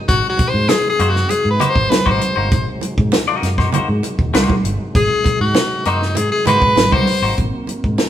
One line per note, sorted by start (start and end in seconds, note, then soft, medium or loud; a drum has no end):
0.00 7.34 C3 medium
0.00 7.34 D#3 medium
0.00 7.34 F#3 medium
0.00 7.34 G#3 medium
0.08 0.21 G#1 loud
0.08 0.27 F#4 loud
0.08 kick loud
0.08 closed hi-hat medium
0.08 muted conga soft
0.29 0.51 F#4 medium
0.37 muted fingered electric bass stroke soft
0.37 kick medium
0.37 closed hi-hat medium
0.37 muted conga soft
0.49 0.70 C5 loud
0.54 0.66 G#2 loud
0.69 0.89 G#4 loud
0.69 snare loud
0.69 closed hi-hat medium
0.69 high conga medium
0.89 1.10 G#4 medium
0.99 1.24 F#2 medium
0.99 1.14 A#3 medium
0.99 1.14 D#4 medium
0.99 1.15 F#4 medium
0.99 1.15 C5 medium
0.99 closed hi-hat medium
1.09 1.31 F#4 medium
1.16 snare soft
1.29 1.50 G#4 loud
1.29 muted fingered electric bass stroke soft
1.29 closed hi-hat loud
1.29 muted conga medium
1.45 1.57 G#2 loud
1.50 1.71 B4 medium
1.60 1.75 A#3 medium
1.60 1.75 D#4 medium
1.60 1.75 F#4 medium
1.60 1.75 C5 loud
1.60 closed hi-hat loud
1.60 muted conga medium
1.60 low conga medium
1.70 1.92 C5 loud
1.75 1.88 G#1 medium
1.75 kick medium
1.90 2.13 B4 loud
1.90 snare loud
1.90 closed hi-hat medium
1.90 high conga medium
2.06 2.19 G#1 medium
2.06 2.21 A#3 medium
2.06 2.21 D#4 medium
2.06 2.21 F#4 medium
2.06 2.20 C5 medium
2.06 kick medium
2.06 high conga medium
2.11 2.72 C5 medium
2.21 closed hi-hat medium
2.21 high conga medium
2.36 2.51 G1 medium
2.36 2.48 A#3 medium
2.36 2.48 D#4 medium
2.36 2.48 F#4 medium
2.36 2.47 C5 medium
2.51 2.64 G#1 loud
2.51 kick loud
2.51 closed hi-hat medium
2.51 muted conga soft
2.81 muted fingered electric bass stroke soft
2.81 closed hi-hat medium
2.81 muted conga soft
2.97 3.10 G#2 loud
2.97 kick loud
3.12 snare loud
3.12 closed hi-hat medium
3.12 high conga medium
3.28 3.48 A#3 medium
3.28 3.48 D#4 medium
3.28 3.48 F#4 medium
3.28 3.48 D#5 medium
3.43 3.67 F#2 medium
3.43 snare soft
3.43 closed hi-hat medium
3.58 3.70 A#3 medium
3.58 3.70 D#4 medium
3.58 3.69 F#4 medium
3.58 3.69 C5 medium
3.58 kick medium
3.58 snare soft
3.73 3.87 A#3 medium
3.73 3.88 D#4 medium
3.73 3.88 F#4 medium
3.73 3.88 C5 loud
3.73 muted fingered electric bass stroke soft
3.73 closed hi-hat medium
3.73 muted conga medium
3.73 low conga medium
3.89 4.01 G#2 loud
4.03 closed hi-hat medium
4.03 muted conga medium
4.19 4.31 D#2 medium
4.19 kick medium
4.34 4.46 C2 loud
4.34 4.54 A#3 medium
4.34 4.54 D#4 medium
4.34 4.54 F#4 loud
4.34 4.54 C5 loud
4.34 snare loud
4.34 closed hi-hat medium
4.34 high conga medium
4.48 kick medium
4.48 high conga loud
4.64 4.76 G1 loud
4.64 closed hi-hat medium
4.64 high conga medium
4.95 5.07 G#1 loud
4.95 5.38 G#4 loud
4.95 kick loud
4.95 closed hi-hat medium
4.95 muted conga soft
5.24 muted fingered electric bass stroke soft
5.24 kick loud
5.24 closed hi-hat medium
5.24 muted conga medium
5.40 5.53 G#2 loud
5.40 5.83 F#4 medium
5.55 snare loud
5.55 closed hi-hat medium
5.55 high conga medium
5.85 6.17 F#2 medium
5.85 6.00 A#3 medium
5.85 6.18 D#4 medium
5.85 6.00 D#4 medium
5.85 6.01 F#4 medium
5.85 6.01 C5 medium
5.85 closed hi-hat medium
6.02 snare soft
6.15 6.29 G#2 loud
6.15 6.31 G#4 medium
6.15 closed hi-hat loud
6.15 muted conga medium
6.32 6.46 G#4 loud
6.45 6.59 G#2 medium
6.45 6.61 A#3 medium
6.45 6.62 D#4 medium
6.45 6.62 F#4 loud
6.45 6.95 B4 loud
6.45 6.62 C5 loud
6.45 closed hi-hat medium
6.45 muted conga medium
6.45 low conga medium
6.62 6.74 G#2 medium
6.62 kick medium
6.76 6.89 G#1 loud
6.76 snare loud
6.76 closed hi-hat medium
6.76 high conga medium
6.91 7.04 C2 medium
6.91 7.07 A#3 medium
6.91 7.07 D#4 medium
6.91 7.07 F#4 medium
6.91 7.06 C5 medium
6.91 7.38 C5 loud
6.91 kick medium
6.91 high conga medium
7.07 open hi-hat medium
7.07 high conga medium
7.22 7.34 G#1 medium
7.22 7.35 A#3 medium
7.22 7.34 D#4 medium
7.22 7.34 F#4 medium
7.22 7.34 C5 medium
7.37 7.50 G#1 loud
7.37 8.09 D#3 medium
7.37 8.09 F#3 soft
7.37 8.09 A#3 medium
7.37 8.09 C4 medium
7.37 kick loud
7.37 closed hi-hat medium
7.37 muted conga soft
7.67 muted fingered electric bass stroke soft
7.67 closed hi-hat medium
7.67 muted conga soft
7.84 7.96 G#2 medium
7.84 kick medium
7.98 snare loud
7.98 closed hi-hat medium
7.98 high conga medium